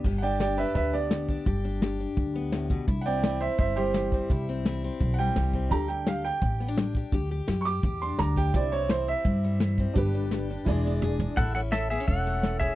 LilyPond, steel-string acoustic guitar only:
\new Staff \with { instrumentName = "Steel-string acoustic guitar" } { \time 4/4 \key g \major \tempo 4 = 170 << { g'8 d'8 g'8 d'4 b4 d'8 | g'8 d'8 g'8 d'4 b4. | e'8 c'8 e'8 c'4 g4 c'8 | e'8 c'8 e'8 c'4 g4 c'8 |
g'8 g'8 g'8 g'4 b16 d'8. g'8 | g'8 g'8 g'8 g'4 d'4 g'8 | e'8 c'8 e'8 c'4 g4 c'8 | g'8 d'8 g'8 d'8 <e gis d' gis'>8 d'8 gis'8 d'8 |
\key a \major e'8 cis'8 e'8 b16 cis'8. a4 cis'8 | } \\ { g,4 d4 g,4 d4 | g,4 d4 g,4 a,8 b,8 | c4 e4 g,4 e4 | c4 e4 g,4 e4 |
d4 g4 a,4 g4 | d4 g4 a,4 g4 | c4 e4 g,4 e4 | g,4 d4 e,4 e4 |
a,4 e4 e,4 e4 | } >> }